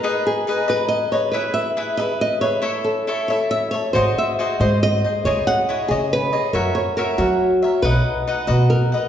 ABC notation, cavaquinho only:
X:1
M:6/8
L:1/8
Q:3/8=92
K:G#m
V:1 name="Cavaquinho"
[DGBd]2 [DGBd] [DGBd]2 [GBd] | [EGBe]2 [EGBe] [EGBe]2 [GBe] | [E=Ace]2 [EAce] [EAce]2 [Ace] | [FG^Bd]2 [FGBd] [FGBd]2 [GBd] |
[EGcd]2 [EGcd] [EGcd]2 [Gcd] | [FAce]2 [FAce] [FAce]2 [Ace] | [DBdf]2 [DBdf] [DBdf]2 [Bdf] |]